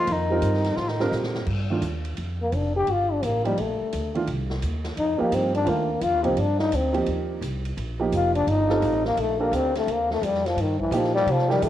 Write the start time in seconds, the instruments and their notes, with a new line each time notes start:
Already playing: trombone F3, upright piano F3 A#3 D#4 A4
0.00 tenor saxophone F4
0.07 upright bass F2, trombone D#3, ride
0.13 tenor saxophone D#4
0.30 upright piano G3 C4 F4 A#4
0.42 upright bass G2, hi-hat pedal, ride
0.54 snare
0.64 snare, ride
0.76 upright bass A2, trombone F3, tenor saxophone F4, snare
0.88 trombone D#3, tenor saxophone D#4, snare
0.99 trombone D3, upright piano G3 C4 F4 A#4, tenor saxophone D4, snare
1.07 trombone D#3, tenor saxophone D#4
1.12 upright bass A#2, snare, hi-hat pedal
1.23 snare
1.35 snare
1.46 upright bass G2, kick, crash
1.70 upright piano D#3 A3 D4 F4
1.82 upright bass D#2, hi-hat pedal, ride
2.05 ride
2.17 upright bass F2, ride
2.42 trombone A#3
2.52 upright bass F1, trombone D4, hi-hat pedal, ride
2.77 trombone G4
2.87 upright bass G1, ride
2.91 trombone F4
3.13 trombone D4
3.23 upright bass A1, trombone A#3, hi-hat pedal, ride
3.44 upright piano F3 A#3 D#4 G4, trombone G3, ride
3.58 upright bass A#1, trombone A3, ride
3.80 muted upright bass stroke
3.93 upright bass D2, hi-hat pedal, ride
4.15 upright piano D#3 A3 D4 F4, ride
4.27 upright bass C2, ride
4.50 snare
4.62 upright bass D#2, hi-hat pedal, ride
4.85 snare, ride
4.97 upright bass F2, trombone D#4, ride
5.18 upright piano F3 A#3 D#4 G4, trombone A#3, muted upright bass stroke
5.32 upright bass G2, trombone C4, hi-hat pedal, ride
5.55 trombone D4, ride
5.65 upright bass D#2, upright piano D#3 A3 D4 F4, trombone A#3, ride
6.01 upright bass F2, trombone F4, hi-hat pedal, ride
6.14 upright bass D#2
6.23 upright bass C2, upright piano F3 A#3 D#4 G4, trombone C4, ride
6.37 upright bass G2, trombone D4, ride
6.59 trombone D#4, snare
6.72 upright bass D2, trombone C4, hi-hat pedal, ride
6.93 upright piano F3 A#3 D#4 G4, ride
7.06 upright bass D#2, ride
7.41 upright bass C2, hi-hat pedal, ride
7.65 ride
7.77 upright bass A#1, ride
7.99 upright piano F3 A#3 D#4 G4
8.12 upright bass F1, trombone F4, hi-hat pedal, ride
8.35 trombone D4, ride
8.47 upright bass G1, trombone D#4, ride
8.69 upright piano G3 C4 F4 A4, snare
8.82 upright bass A1, hi-hat pedal, ride
9.05 trombone A#3, snare
9.17 upright bass A#1, trombone A3, ride
9.40 trombone A#3, upright piano D4 G4 A4 A#4
9.52 upright bass D2, trombone C4, hi-hat pedal, ride
9.75 trombone A3, snare, ride
9.87 upright bass D#2, ride
9.93 trombone A#3
10.10 trombone A3, snare
10.21 upright bass F2, trombone G3, hi-hat pedal, ride
10.34 snare
10.46 trombone F3, snare, ride
10.56 upright bass G2, ride
10.61 trombone D#3
10.80 trombone E3, kick
10.91 upright bass A#2, upright piano F3 A#3 D#4 G4, hi-hat pedal, ride
10.96 trombone F3
11.04 snare
11.15 trombone G3, snare
11.26 upright bass C3, ride
11.32 trombone F3
11.39 snare
11.48 upright piano F3 D#4 G4 A#4, trombone G3, snare
11.62 upright bass A2, trombone A3, hi-hat pedal, ride